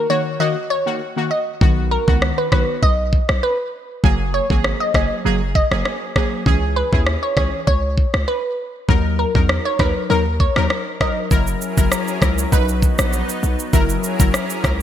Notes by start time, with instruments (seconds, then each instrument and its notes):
0.10 synth stab D#3 A#3 F#4, synth pluck C#5
0.40 synth stab D#3 A#3 F#4, synth pluck D#5
0.70 synth pluck C#5
0.86 synth stab D#3 A#3 F#4
1.16 synth stab D#3 A#3 F#4
1.31 synth pluck D#5
1.61 808-style bass B1, synth stab D#3 B3 F#4, kick
1.91 synth pluck A#4
2.07 808-style bass C#2, synth stab D#3 B3 F#4, kick
2.22 cross-stick
2.38 synth pluck B4
2.52 808-style bass B1, synth stab D#3 B3 F#4, synth pluck B4, kick, cross-stick
2.83 808-style bass B1, synth pluck D#5, kick
3.13 kick
3.29 808-style bass B1, cross-stick
3.43 synth pluck B4
4.04 808-style bass F#1, synth stab F#3 A#3 G#4, kick
4.34 synth pluck C#5
4.50 808-style bass G#1, synth stab F#3 A#3 G#4, kick
4.64 cross-stick
4.80 synth pluck D#5
4.94 808-style bass F#1, synth stab F#3 A#3 G#4, synth pluck D#5, kick, cross-stick
5.25 808-style bass F#1, synth stab F#3 A#3 G#4
5.55 synth pluck D#5, kick
5.71 808-style bass F#1, synth stab F#3 A#3 G#4, cross-stick
5.85 cross-stick
6.16 synth stab F#3 A#3 G#4, kick, cross-stick
6.46 808-style bass C#2, synth stab E3 C#4 G#4, kick
6.76 synth pluck B4
6.93 808-style bass D#2, synth stab C#4 E4 G#4, kick
7.07 cross-stick
7.23 synth pluck C#5
7.37 808-style bass C#2, synth stab E3 C#4 G#4, synth pluck C#5, kick, cross-stick
7.67 808-style bass C#2, synth pluck C#5, kick
7.98 kick
8.14 808-style bass C#2, cross-stick
8.28 synth pluck B4
8.88 808-style bass D#2, synth stab F#3 D#4 A#4, kick
9.19 synth pluck A#4
9.35 808-style bass E2, synth stab F#3 D#4 A#4, kick
9.49 cross-stick
9.65 synth pluck C#5
9.79 808-style bass D#2, synth stab F#3 D#4 A#4, synth pluck B4, kick, cross-stick
10.10 808-style bass D#2, synth stab F#3 D#4 A#4, synth pluck A#4
10.40 synth pluck C#5, kick
10.56 808-style bass D#2, synth stab F#3 D#4 A#4, cross-stick
10.70 cross-stick
11.00 synth stab F#3 D#4 A#4, synth pluck D#5, kick, cross-stick
11.31 808-style bass F#1, synth stab F#3 E4 A#4, analog synth pad F#3 C#4 E4 G#4 A#4, kick, shaker
11.47 shaker
11.61 shaker
11.77 808-style bass F#1, synth stab F#3 E4 A#4, kick, shaker
11.92 cross-stick, shaker
12.08 shaker
12.22 808-style bass C#2, synth stab F#3 E4 A#4, kick, cross-stick, shaker
12.38 shaker
12.52 808-style bass B1, synth stab F#3 D#4 B4, analog synth pad B3 D#4, kick, shaker
12.69 shaker
12.82 kick, shaker
12.98 808-style bass A#1, cross-stick, shaker
13.13 shaker
13.29 shaker
13.43 808-style bass B1, shaker
13.59 shaker
13.73 808-style bass F#1, synth stab F#3 E4 A#4, analog synth pad F#3 C#4 E4 G#4 A#4, kick, shaker
13.89 shaker
14.04 shaker
14.19 808-style bass F#1, synth stab F#3 E4 A#4, kick, shaker
14.34 cross-stick, shaker
14.50 shaker
14.64 808-style bass C#2, synth stab F#3 E4 A#4, kick, cross-stick, shaker